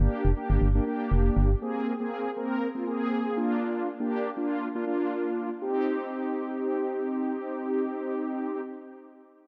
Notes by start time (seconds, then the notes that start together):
0.00 A#3 D4 G4
0.25 F1
0.36 A#3 D4 G4
0.50 G1
0.62 G1
0.75 A#3 D4 G4
0.86 A#3 D4 G4
1.12 F1
1.37 G1
1.61 A#3 C4 G#4
2.00 A#3 C4 G#4
2.36 A#3 C4 A#4
2.75 A#3 C4 F4
2.86 A#3 C4 G#4
3.36 A#3 D4 F4
4.00 A#3 D4 G4
4.36 A#3 D4 F4
4.75 A#3 D4 F4
4.87 A#3 D4 F4
5.62 C4 D#4 G4